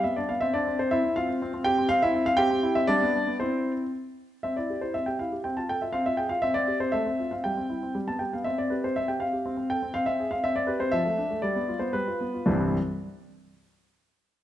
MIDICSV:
0, 0, Header, 1, 2, 480
1, 0, Start_track
1, 0, Key_signature, 0, "major"
1, 0, Tempo, 495458
1, 412, Time_signature, 2, 2, 24, 8
1, 2322, Tempo, 511945
1, 4242, Tempo, 493827
1, 6162, Tempo, 508906
1, 8562, Tempo, 494234
1, 10962, Tempo, 522193
1, 13720, End_track
2, 0, Start_track
2, 0, Title_t, "Grand piano"
2, 0, Program_c, 0, 0
2, 34, Note_on_c, 0, 76, 68
2, 42, Note_on_c, 0, 59, 41
2, 158, Note_on_c, 0, 74, 68
2, 162, Note_off_c, 0, 76, 0
2, 170, Note_on_c, 0, 62, 39
2, 172, Note_off_c, 0, 59, 0
2, 279, Note_on_c, 0, 77, 68
2, 286, Note_off_c, 0, 74, 0
2, 290, Note_on_c, 0, 59, 37
2, 298, Note_off_c, 0, 62, 0
2, 392, Note_on_c, 0, 76, 85
2, 406, Note_on_c, 0, 60, 53
2, 407, Note_off_c, 0, 77, 0
2, 412, Note_off_c, 0, 59, 0
2, 515, Note_off_c, 0, 60, 0
2, 519, Note_on_c, 0, 74, 75
2, 524, Note_off_c, 0, 76, 0
2, 528, Note_on_c, 0, 62, 59
2, 530, Note_on_c, 0, 60, 44
2, 636, Note_off_c, 0, 60, 0
2, 651, Note_on_c, 0, 60, 43
2, 755, Note_off_c, 0, 60, 0
2, 756, Note_off_c, 0, 62, 0
2, 767, Note_on_c, 0, 72, 73
2, 769, Note_off_c, 0, 74, 0
2, 770, Note_on_c, 0, 60, 44
2, 874, Note_off_c, 0, 60, 0
2, 883, Note_on_c, 0, 76, 86
2, 889, Note_on_c, 0, 60, 52
2, 890, Note_on_c, 0, 64, 65
2, 893, Note_off_c, 0, 72, 0
2, 994, Note_off_c, 0, 60, 0
2, 1009, Note_on_c, 0, 60, 44
2, 1105, Note_off_c, 0, 76, 0
2, 1115, Note_off_c, 0, 60, 0
2, 1117, Note_off_c, 0, 64, 0
2, 1123, Note_on_c, 0, 77, 86
2, 1129, Note_on_c, 0, 60, 46
2, 1136, Note_on_c, 0, 65, 61
2, 1234, Note_off_c, 0, 60, 0
2, 1248, Note_on_c, 0, 60, 46
2, 1362, Note_off_c, 0, 60, 0
2, 1377, Note_on_c, 0, 60, 59
2, 1476, Note_off_c, 0, 60, 0
2, 1491, Note_on_c, 0, 60, 47
2, 1578, Note_off_c, 0, 65, 0
2, 1588, Note_off_c, 0, 60, 0
2, 1593, Note_on_c, 0, 79, 97
2, 1603, Note_on_c, 0, 60, 50
2, 1605, Note_off_c, 0, 77, 0
2, 1605, Note_on_c, 0, 67, 73
2, 1713, Note_off_c, 0, 60, 0
2, 1728, Note_on_c, 0, 60, 50
2, 1826, Note_off_c, 0, 60, 0
2, 1827, Note_off_c, 0, 67, 0
2, 1829, Note_on_c, 0, 77, 108
2, 1838, Note_off_c, 0, 79, 0
2, 1841, Note_on_c, 0, 60, 65
2, 1954, Note_off_c, 0, 60, 0
2, 1956, Note_off_c, 0, 77, 0
2, 1962, Note_on_c, 0, 76, 100
2, 1968, Note_on_c, 0, 60, 53
2, 1970, Note_on_c, 0, 64, 76
2, 2065, Note_off_c, 0, 60, 0
2, 2080, Note_on_c, 0, 60, 53
2, 2187, Note_off_c, 0, 60, 0
2, 2189, Note_off_c, 0, 64, 0
2, 2190, Note_on_c, 0, 77, 97
2, 2201, Note_off_c, 0, 76, 0
2, 2201, Note_on_c, 0, 60, 52
2, 2288, Note_off_c, 0, 60, 0
2, 2293, Note_on_c, 0, 79, 110
2, 2303, Note_on_c, 0, 60, 67
2, 2309, Note_on_c, 0, 67, 83
2, 2316, Note_off_c, 0, 77, 0
2, 2410, Note_off_c, 0, 60, 0
2, 2424, Note_on_c, 0, 60, 54
2, 2541, Note_on_c, 0, 64, 60
2, 2555, Note_off_c, 0, 60, 0
2, 2624, Note_off_c, 0, 79, 0
2, 2643, Note_off_c, 0, 67, 0
2, 2656, Note_on_c, 0, 76, 96
2, 2662, Note_on_c, 0, 60, 52
2, 2673, Note_off_c, 0, 64, 0
2, 2770, Note_on_c, 0, 74, 104
2, 2777, Note_on_c, 0, 55, 71
2, 2778, Note_on_c, 0, 62, 78
2, 2784, Note_off_c, 0, 76, 0
2, 2787, Note_off_c, 0, 60, 0
2, 2901, Note_off_c, 0, 55, 0
2, 2905, Note_on_c, 0, 59, 56
2, 3007, Note_off_c, 0, 62, 0
2, 3021, Note_on_c, 0, 62, 47
2, 3034, Note_off_c, 0, 59, 0
2, 3142, Note_on_c, 0, 59, 44
2, 3153, Note_off_c, 0, 62, 0
2, 3224, Note_off_c, 0, 74, 0
2, 3259, Note_on_c, 0, 72, 77
2, 3267, Note_on_c, 0, 64, 43
2, 3268, Note_off_c, 0, 59, 0
2, 3269, Note_on_c, 0, 60, 57
2, 3555, Note_off_c, 0, 72, 0
2, 3659, Note_off_c, 0, 64, 0
2, 3724, Note_off_c, 0, 60, 0
2, 4230, Note_on_c, 0, 76, 65
2, 4240, Note_on_c, 0, 60, 43
2, 4358, Note_off_c, 0, 76, 0
2, 4360, Note_off_c, 0, 60, 0
2, 4360, Note_on_c, 0, 74, 56
2, 4374, Note_on_c, 0, 64, 32
2, 4490, Note_on_c, 0, 67, 34
2, 4497, Note_off_c, 0, 64, 0
2, 4601, Note_on_c, 0, 72, 56
2, 4606, Note_off_c, 0, 74, 0
2, 4609, Note_on_c, 0, 64, 35
2, 4616, Note_off_c, 0, 67, 0
2, 4725, Note_on_c, 0, 76, 71
2, 4726, Note_off_c, 0, 72, 0
2, 4733, Note_on_c, 0, 60, 41
2, 4735, Note_off_c, 0, 64, 0
2, 4842, Note_on_c, 0, 79, 52
2, 4847, Note_off_c, 0, 76, 0
2, 4848, Note_off_c, 0, 60, 0
2, 4855, Note_on_c, 0, 67, 35
2, 4966, Note_off_c, 0, 79, 0
2, 4969, Note_on_c, 0, 77, 61
2, 4976, Note_on_c, 0, 64, 35
2, 4978, Note_off_c, 0, 67, 0
2, 5094, Note_on_c, 0, 67, 35
2, 5099, Note_off_c, 0, 64, 0
2, 5113, Note_off_c, 0, 77, 0
2, 5210, Note_on_c, 0, 79, 55
2, 5211, Note_off_c, 0, 67, 0
2, 5218, Note_on_c, 0, 60, 45
2, 5329, Note_off_c, 0, 79, 0
2, 5330, Note_off_c, 0, 60, 0
2, 5334, Note_on_c, 0, 81, 56
2, 5345, Note_on_c, 0, 65, 37
2, 5451, Note_off_c, 0, 81, 0
2, 5456, Note_on_c, 0, 79, 70
2, 5460, Note_on_c, 0, 69, 39
2, 5463, Note_off_c, 0, 65, 0
2, 5572, Note_off_c, 0, 79, 0
2, 5574, Note_on_c, 0, 76, 56
2, 5580, Note_off_c, 0, 69, 0
2, 5581, Note_on_c, 0, 65, 38
2, 5681, Note_on_c, 0, 77, 79
2, 5690, Note_off_c, 0, 76, 0
2, 5692, Note_on_c, 0, 60, 53
2, 5694, Note_off_c, 0, 65, 0
2, 5803, Note_off_c, 0, 77, 0
2, 5805, Note_off_c, 0, 60, 0
2, 5811, Note_on_c, 0, 76, 78
2, 5820, Note_on_c, 0, 65, 43
2, 5921, Note_on_c, 0, 79, 65
2, 5927, Note_off_c, 0, 76, 0
2, 5932, Note_on_c, 0, 68, 43
2, 5938, Note_off_c, 0, 65, 0
2, 6039, Note_on_c, 0, 77, 75
2, 6042, Note_off_c, 0, 79, 0
2, 6047, Note_on_c, 0, 65, 42
2, 6053, Note_off_c, 0, 68, 0
2, 6161, Note_off_c, 0, 77, 0
2, 6161, Note_on_c, 0, 76, 89
2, 6165, Note_off_c, 0, 65, 0
2, 6175, Note_on_c, 0, 60, 55
2, 6277, Note_on_c, 0, 74, 81
2, 6278, Note_off_c, 0, 60, 0
2, 6279, Note_off_c, 0, 76, 0
2, 6292, Note_on_c, 0, 60, 43
2, 6405, Note_on_c, 0, 67, 44
2, 6410, Note_off_c, 0, 60, 0
2, 6492, Note_off_c, 0, 74, 0
2, 6523, Note_on_c, 0, 72, 71
2, 6524, Note_on_c, 0, 60, 42
2, 6527, Note_off_c, 0, 67, 0
2, 6632, Note_on_c, 0, 76, 86
2, 6640, Note_off_c, 0, 72, 0
2, 6641, Note_off_c, 0, 60, 0
2, 6644, Note_on_c, 0, 57, 59
2, 6758, Note_off_c, 0, 57, 0
2, 6770, Note_on_c, 0, 60, 43
2, 6891, Note_on_c, 0, 65, 38
2, 6892, Note_off_c, 0, 60, 0
2, 6999, Note_off_c, 0, 76, 0
2, 7003, Note_on_c, 0, 77, 56
2, 7013, Note_off_c, 0, 65, 0
2, 7014, Note_on_c, 0, 60, 35
2, 7122, Note_on_c, 0, 79, 71
2, 7124, Note_off_c, 0, 77, 0
2, 7129, Note_off_c, 0, 60, 0
2, 7134, Note_on_c, 0, 55, 47
2, 7246, Note_off_c, 0, 55, 0
2, 7249, Note_on_c, 0, 60, 35
2, 7366, Note_on_c, 0, 64, 36
2, 7373, Note_off_c, 0, 60, 0
2, 7491, Note_on_c, 0, 60, 34
2, 7492, Note_off_c, 0, 64, 0
2, 7602, Note_on_c, 0, 55, 43
2, 7605, Note_off_c, 0, 79, 0
2, 7608, Note_off_c, 0, 60, 0
2, 7720, Note_off_c, 0, 55, 0
2, 7724, Note_on_c, 0, 81, 66
2, 7728, Note_on_c, 0, 59, 34
2, 7832, Note_on_c, 0, 79, 58
2, 7845, Note_on_c, 0, 67, 31
2, 7846, Note_off_c, 0, 81, 0
2, 7854, Note_off_c, 0, 59, 0
2, 7960, Note_off_c, 0, 79, 0
2, 7967, Note_on_c, 0, 77, 52
2, 7973, Note_off_c, 0, 67, 0
2, 7975, Note_on_c, 0, 59, 32
2, 8072, Note_on_c, 0, 76, 72
2, 8083, Note_on_c, 0, 60, 44
2, 8088, Note_off_c, 0, 77, 0
2, 8092, Note_off_c, 0, 59, 0
2, 8192, Note_off_c, 0, 60, 0
2, 8200, Note_off_c, 0, 76, 0
2, 8203, Note_on_c, 0, 74, 61
2, 8206, Note_on_c, 0, 60, 36
2, 8313, Note_on_c, 0, 71, 49
2, 8325, Note_off_c, 0, 74, 0
2, 8325, Note_on_c, 0, 67, 37
2, 8333, Note_off_c, 0, 60, 0
2, 8439, Note_off_c, 0, 71, 0
2, 8446, Note_on_c, 0, 72, 61
2, 8448, Note_on_c, 0, 60, 37
2, 8451, Note_off_c, 0, 67, 0
2, 8556, Note_off_c, 0, 60, 0
2, 8558, Note_on_c, 0, 76, 77
2, 8564, Note_off_c, 0, 72, 0
2, 8570, Note_on_c, 0, 60, 44
2, 8676, Note_on_c, 0, 79, 59
2, 8682, Note_off_c, 0, 76, 0
2, 8684, Note_off_c, 0, 60, 0
2, 8684, Note_on_c, 0, 67, 37
2, 8790, Note_on_c, 0, 77, 66
2, 8801, Note_off_c, 0, 79, 0
2, 8803, Note_on_c, 0, 60, 36
2, 8810, Note_off_c, 0, 67, 0
2, 8917, Note_on_c, 0, 67, 35
2, 8930, Note_off_c, 0, 60, 0
2, 9039, Note_on_c, 0, 60, 46
2, 9041, Note_off_c, 0, 67, 0
2, 9139, Note_off_c, 0, 60, 0
2, 9153, Note_on_c, 0, 60, 37
2, 9240, Note_off_c, 0, 77, 0
2, 9275, Note_on_c, 0, 79, 74
2, 9285, Note_on_c, 0, 69, 40
2, 9286, Note_off_c, 0, 60, 0
2, 9397, Note_on_c, 0, 60, 41
2, 9412, Note_off_c, 0, 69, 0
2, 9499, Note_off_c, 0, 60, 0
2, 9508, Note_on_c, 0, 77, 83
2, 9514, Note_on_c, 0, 60, 54
2, 9522, Note_off_c, 0, 79, 0
2, 9620, Note_off_c, 0, 60, 0
2, 9626, Note_on_c, 0, 76, 79
2, 9635, Note_on_c, 0, 60, 43
2, 9638, Note_off_c, 0, 77, 0
2, 9760, Note_on_c, 0, 68, 43
2, 9767, Note_off_c, 0, 60, 0
2, 9851, Note_off_c, 0, 76, 0
2, 9867, Note_on_c, 0, 77, 74
2, 9875, Note_on_c, 0, 60, 41
2, 9889, Note_off_c, 0, 68, 0
2, 9988, Note_off_c, 0, 60, 0
2, 9992, Note_on_c, 0, 76, 88
2, 9995, Note_off_c, 0, 77, 0
2, 10003, Note_on_c, 0, 60, 52
2, 10098, Note_off_c, 0, 60, 0
2, 10108, Note_on_c, 0, 74, 76
2, 10113, Note_on_c, 0, 60, 44
2, 10117, Note_off_c, 0, 76, 0
2, 10218, Note_on_c, 0, 71, 61
2, 10228, Note_on_c, 0, 67, 46
2, 10234, Note_off_c, 0, 74, 0
2, 10242, Note_off_c, 0, 60, 0
2, 10343, Note_on_c, 0, 72, 77
2, 10347, Note_on_c, 0, 60, 47
2, 10348, Note_off_c, 0, 71, 0
2, 10359, Note_off_c, 0, 67, 0
2, 10457, Note_on_c, 0, 76, 98
2, 10469, Note_on_c, 0, 53, 62
2, 10470, Note_off_c, 0, 72, 0
2, 10472, Note_off_c, 0, 60, 0
2, 10589, Note_off_c, 0, 53, 0
2, 10590, Note_on_c, 0, 57, 48
2, 10713, Note_on_c, 0, 62, 46
2, 10721, Note_off_c, 0, 57, 0
2, 10835, Note_on_c, 0, 57, 47
2, 10844, Note_off_c, 0, 62, 0
2, 10914, Note_off_c, 0, 76, 0
2, 10947, Note_on_c, 0, 74, 74
2, 10959, Note_on_c, 0, 55, 59
2, 10961, Note_off_c, 0, 57, 0
2, 11073, Note_on_c, 0, 59, 45
2, 11075, Note_off_c, 0, 55, 0
2, 11189, Note_on_c, 0, 65, 48
2, 11201, Note_off_c, 0, 59, 0
2, 11274, Note_off_c, 0, 74, 0
2, 11291, Note_on_c, 0, 72, 64
2, 11298, Note_on_c, 0, 59, 45
2, 11320, Note_off_c, 0, 65, 0
2, 11416, Note_on_c, 0, 71, 74
2, 11425, Note_off_c, 0, 72, 0
2, 11425, Note_on_c, 0, 55, 50
2, 11435, Note_off_c, 0, 59, 0
2, 11550, Note_off_c, 0, 55, 0
2, 11550, Note_on_c, 0, 65, 41
2, 11671, Note_on_c, 0, 59, 40
2, 11684, Note_off_c, 0, 65, 0
2, 11795, Note_on_c, 0, 65, 35
2, 11807, Note_off_c, 0, 59, 0
2, 11902, Note_on_c, 0, 36, 69
2, 11903, Note_on_c, 0, 43, 57
2, 11904, Note_on_c, 0, 52, 58
2, 11907, Note_on_c, 0, 72, 52
2, 11910, Note_on_c, 0, 55, 57
2, 11912, Note_on_c, 0, 60, 57
2, 11915, Note_on_c, 0, 64, 58
2, 11916, Note_off_c, 0, 71, 0
2, 11922, Note_off_c, 0, 65, 0
2, 12180, Note_off_c, 0, 36, 0
2, 12180, Note_off_c, 0, 43, 0
2, 12181, Note_off_c, 0, 52, 0
2, 12182, Note_off_c, 0, 72, 0
2, 12184, Note_off_c, 0, 55, 0
2, 12185, Note_off_c, 0, 60, 0
2, 12187, Note_off_c, 0, 64, 0
2, 13720, End_track
0, 0, End_of_file